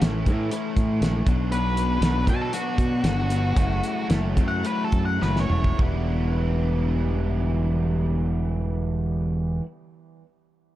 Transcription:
0.01 A1 A2 E3 A3 C#4 E4 A4 C#5, snare, closed hi-hat
0.26 A2 E3 A3 C#4 E4 A4 C#5, kick, closed hi-hat
0.51 A2 E3 A3 C#4 E4 A4 C#5, closed hi-hat
0.77 A2, kick, closed hi-hat
1.00 A#1 A2 E3 A3 C#4 E4 A4 C#5, snare, closed hi-hat
1.27 B1 B2 F#3 B3 D4 F#4 C#5, kick, closed hi-hat
1.51 B2 F#3 B3 D4 F#4 B4 C#5, closed hi-hat
1.77 closed hi-hat
2.01 B1 B2 F#3 B3 D4 F#4 C#5, snare, closed hi-hat
2.26 B2 F#3 B3 D4 F#4 C#5 A5, kick, closed hi-hat
2.41 A4
2.52 B2 F#3 B3 D4 F#4 C#5, closed hi-hat
2.78 B2, kick, closed hi-hat
3.04 G1 B2 F#3 B3 D4 F#4 C#5, snare, closed hi-hat
3.29 B2 F#3 B3 D4 F#4 C#5, closed hi-hat
3.55 F#1 F#2 C#3 F#3 A3 C#4 E4 F#4 C#5, kick, closed hi-hat
3.83 closed hi-hat
4.09 F#1 F#2 C#3 F#3 A3 C#4 E4 F#4 C#5, snare, closed hi-hat
4.36 F#2 C#3 F#3 A3 C#4 E4 F#4 C#5, kick, closed hi-hat
4.48 F#5
4.64 F#2 C#3 F#3 A3 C#4 E4 F#4 B4 C#5, closed hi-hat
4.84 A4
4.92 F#2, kick, closed hi-hat
5.05 F#5
5.19 F#1 F#2 C#3 F#3 A3 C#4 E4 F#4 B4 C#5, snare
5.36 snare
5.40 C#5
5.48 E1 F#2 C#3 F#3 A3 C#4 E4 F#4 C#5, mid tom
5.64 kick
5.77 E1 D3 E3 G3 B3, kick
5.81 E4

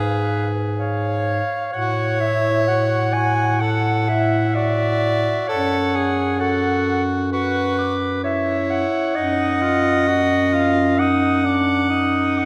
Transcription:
Already playing: G#2 G#4 B4 F5
0.78 C#5 F5
1.73 A2 F#4 C#5 F#5
2.20 E4 E5
2.68 F#4 F#5
3.13 F#4 G#5
3.60 A4 F#5
4.08 E4 E5
4.55 F#4 D5
5.47 F#2 A4 C#5 F#5
5.96 G#4
6.39 F#4 A4 F#5
7.32 F#4 B4 C#6
7.79 D6
8.24 E4 C#5 E5
8.70 F#5
9.16 F#2 D#4 D#5
9.62 F4
10.08 F#4 F#5
10.53 F4 F5
10.98 D#4 F#5 D#6
11.44 D4 D6
11.90 D#4 D#6
12.38 F#5

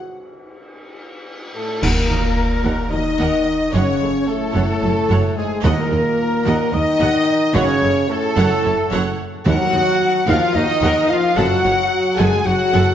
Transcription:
1.54 A2 A3 A4
1.82 D#2 A#2 A#3 A#4 F#5, concert bass drum, crash
2.10 D#2 F#4 D#5
2.63 D#2 A#4 F#5
2.91 D#2 D#3 D#4 F#4 D#5
3.19 D#2 A#4 F#5
3.72 F#1 F#2 C#3 C#4 C#5 F#5
4.01 F#1 F#2 A4 C#5
4.26 A2 A3 A4
4.54 F#1 F#2 C#5 F#5
4.82 F#1 F#2 A4 C#5
5.10 F#1 F#2 C#5 F#5
5.36 G#2 G#3 G#4
5.63 D#2 A#2 D#3 A#3 A#4 D#5 F#5
5.91 D#2 A#4 D#5
6.45 D#2 D#5 F#5
6.72 D#2 D#3 D#4 A#4 D#5
7.00 D#2 D#5 F#5
7.54 F#1 F#2 C#3 C#4 C#5 F#5
7.81 F#1 F#2 A4 C#5
8.08 A2 A3 A4
8.37 F#1 F#2 C#5 F#5
8.64 F#1 F#2 A4 C#5
8.92 F#1 F#2 C#5 F#5
9.45 D#2 D#3 F#3 F#4 A#4 F#5
9.73 D#2 F#4 D#5
10.27 D#2 F3 F4 A#4 F5 F#5
10.55 D#2 D#3 D#4 F#4 D#5
10.82 D#2 A#4 F#5
11.08 F3 F4 F5
11.35 F#1 F#2 F#3 F#4 A4 F#5
11.63 F#1 F#2 F#4 C#5
12.17 F#1 F#2 G#3 G#4 A4 F#5 G#5
12.45 F#1 F#2 F#3 F#4 C#5 F#5
12.74 F#1 F#2 A4 F#5

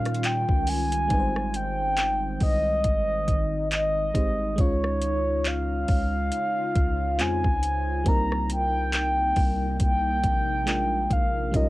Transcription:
Already playing: A#2 D#3 G3 C#4 D#4 F4 A#4 F5
0.05 cross-stick, closed hi-hat
0.14 closed hi-hat
0.24 G5, clap, closed hi-hat
0.49 C#2, kick
0.67 G#5, closed hi-hat, open hi-hat
0.92 closed hi-hat
1.08 G#1 G3 G#3 C4 D#4, kick, closed hi-hat
1.13 B4
1.20 C5
1.36 cross-stick
1.54 G5, closed hi-hat
1.97 clap, closed hi-hat
2.40 C2 D#5, kick, open hi-hat
2.84 G#1, kick, closed hi-hat
3.28 G#1, kick, closed hi-hat
3.71 D#5, clap, closed hi-hat
4.14 G#1 G#3 C4 D#4 G4 C5, kick, closed hi-hat
4.56 C#2 C#3 G#3 C#4 F4, kick, closed hi-hat
4.60 F4 C#5
4.84 cross-stick
5.02 closed hi-hat
5.45 F5, clap, closed hi-hat
5.88 C#2, kick, open hi-hat
6.32 closed hi-hat
6.76 C#2, kick, closed hi-hat
7.18 F2 G#3 C4 C#4 F4 C5 G#5, clap, closed hi-hat
7.44 C#2, kick
7.63 closed hi-hat
8.04 C2 C3 G3 A#3 C4 D#4 A#5, kick, closed hi-hat
8.09 A#4
8.32 cross-stick
8.50 G5, closed hi-hat
8.93 clap, closed hi-hat
9.36 C2, kick, open hi-hat
9.80 C2 G5, kick, closed hi-hat
10.23 A#1, kick, closed hi-hat
10.66 G#3 A#3 D4 F4 A#4, clap, closed hi-hat
11.11 A#1 F5, kick, closed hi-hat
11.51 A#1 D#3 G3 C#4 D#4 F4, kick, closed hi-hat
11.56 A#4 D#5

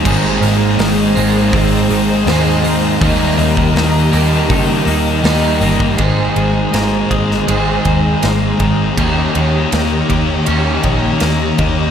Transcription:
Already playing: A#3 D#4
0.04 G#1 G#2 D#3 G#3 C4 D#4 G#4 C5 D#5 A#5, kick, crash
0.08 G#4 C5
0.41 G#1 D#3 G#3 A#3, open hi-hat
0.78 G#1 G#2 D#3, snare, open hi-hat
0.82 G#3
1.15 G#1 G#3 A#3 C4 D#4 G#4 C5, open hi-hat
1.19 D#3 G#3
1.53 G#1 G#2 D#3 G#3 C4, kick, open hi-hat
1.89 G#1 D#3 G#3, open hi-hat
2.26 D#2 G#2 D#3 G#3 C4 D#4 G#4, snare, open hi-hat
2.30 G#3 C5
2.63 D#3 G#3 A#3, open hi-hat
3.00 D#2 D#3 G3 A#3 D#4 G4 A#4, kick, open hi-hat
3.04 D#5
3.37 D#2 A#3 D#4, open hi-hat
3.57 kick
3.75 D#2 D#3 A#3 D#4, snare, open hi-hat
4.11 D#2 G3 A#3 D#4 G4 D#5, open hi-hat
4.15 D#3
4.49 C#3 D#3 A#3 D#4, kick, open hi-hat
4.86 D#2 D#3 A#3 D#4, open hi-hat
5.23 D#2 D#3 G3 A#3 D#4 G4, snare, open hi-hat
5.27 D#5
5.61 G1 A#3 D#4, open hi-hat
5.80 kick
5.97 G#1 G#2 D#3 G#3 D#4 G#4 C5 D#5 A#5, kick, ride
6.02 C5
6.36 G#1 D#3, ride
6.72 G#1 G#2 D#3 G#3 A#3, snare, ride
7.10 G#1 G#4, kick, ride
7.31 snare
7.46 G#1 G#2 D#3 G#3 C4 D#4, ride
7.50 G#4 C5
7.85 D#2 D#3, kick, ride
8.23 G#1 A#3, snare, ride
8.58 G#1 D#3 G#3, kick, ride
8.96 D#2 D#3 A#3 D#4 G4 C#5 D#5, kick, ride
9.00 C#4 G4 C#5
9.35 D#2 D#3, ride
9.71 D#2 D#3 A#3 D#4, snare, ride
10.09 D#2 G4, kick, ride
10.46 D#2 D#3 A#3 C#4 D#4, ride
10.50 G4 C#5
10.83 A#1 D#3, kick, ride
11.20 D#2 A#3, snare, ride
11.58 D#2 D#3 A#3 D#4, kick, ride

